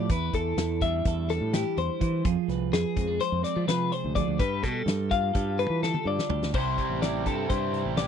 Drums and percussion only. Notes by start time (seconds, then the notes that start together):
0.09 kick, closed hi-hat
0.33 kick, closed hi-hat
0.58 snare, closed hi-hat
0.81 kick, closed hi-hat
1.05 kick, closed hi-hat
1.29 snare, closed hi-hat
1.53 snare, closed hi-hat
1.77 closed hi-hat
2.01 kick, closed hi-hat
2.25 kick, closed hi-hat
2.49 snare, closed hi-hat
2.73 snare, closed hi-hat
2.97 kick, closed hi-hat
3.20 closed hi-hat
3.44 snare, closed hi-hat
3.68 snare, closed hi-hat
3.92 closed hi-hat
4.16 kick, closed hi-hat
4.39 kick, closed hi-hat
4.63 kick, snare, closed hi-hat
4.88 snare, closed hi-hat
5.11 kick, closed hi-hat
5.35 kick, closed hi-hat
5.59 closed hi-hat
5.83 snare
5.94 high tom
6.19 snare
6.30 floor tom
6.43 snare
6.54 kick, crash
6.78 kick, closed hi-hat
7.02 snare, closed hi-hat
7.26 kick, closed hi-hat
7.50 kick, closed hi-hat
7.74 closed hi-hat
7.97 snare, closed hi-hat